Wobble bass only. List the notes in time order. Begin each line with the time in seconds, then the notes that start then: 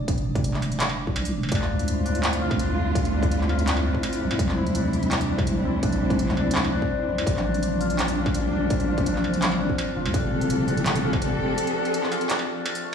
0.08 F1
1.16 C2
1.34 F1
1.52 D2
2.51 D2
2.78 D2
2.95 D2
4.21 C2
4.31 F2
4.39 C2
5.39 C2
5.65 C2
5.83 C2
7.09 A#1
7.18 E2
7.27 A#1
8.26 A#1
8.53 A#1
8.71 A#1
9.96 F1
10.05 D2
10.14 F1
11.13 F1
11.40 F1